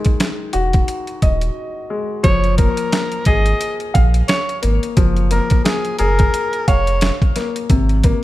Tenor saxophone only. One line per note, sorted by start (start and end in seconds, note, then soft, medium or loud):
2.24 2.55 C#5 loud
2.58 3.22 A#4 medium
3.26 3.77 D#5 medium
4.28 4.59 C#5 medium
5.32 5.62 A#4 medium
5.64 5.96 G#4 medium
5.99 6.63 A#4 medium
6.68 7.19 C#5 medium